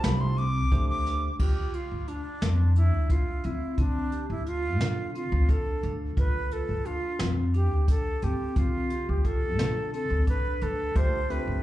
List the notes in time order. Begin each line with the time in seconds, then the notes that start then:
Already playing: A3 D4 F4 G4 C5
0.04 C2 B5, snare, closed hi-hat
0.21 C6
0.37 C4 D6, closed hi-hat
0.72 D2 A3 D4 G4 C5, kick, closed hi-hat
0.90 D6
1.06 D4, snare, closed hi-hat
1.39 D2 F4 G4, kick, crash
1.74 F4, closed hi-hat
1.92 D2
2.08 D4, closed hi-hat
2.42 F2 C4, snare, closed hi-hat
2.76 D4 E4, closed hi-hat
2.93 D2
3.10 F4, kick, closed hi-hat
3.44 D2 C4 E4, closed hi-hat
3.78 D3 C4 D4, kick, closed hi-hat
4.12 G4, closed hi-hat
4.30 D2 E4
4.46 F4, closed hi-hat
4.80 D3, snare, closed hi-hat
5.15 C4 F4, closed hi-hat
5.32 D2
5.49 D4 A4, kick, closed hi-hat
5.83 D2 D4, closed hi-hat
6.17 D2 F4 B4, kick, closed hi-hat
6.51 A4, closed hi-hat
6.69 D2
6.85 D4 F4, closed hi-hat
7.19 F2 C4, snare, closed hi-hat
7.54 D4 G4, closed hi-hat
7.71 D2
7.88 A4, kick, closed hi-hat
8.22 D2 C4 G4, closed hi-hat
8.56 D3 C4 F4, kick, closed hi-hat
8.90 G4, closed hi-hat
9.09 D2 G4
9.25 F4 A4, kick, closed hi-hat
9.59 D3, snare, closed hi-hat
9.93 C4 A4, closed hi-hat
10.10 D2
10.27 D4 B4, kick, closed hi-hat
10.61 D2 D4 A4, closed hi-hat
10.96 D2 A3 D4 F4 G4 C5, kick, closed hi-hat
11.30 A3 C4 D4 G4 B4, closed hi-hat
11.47 D2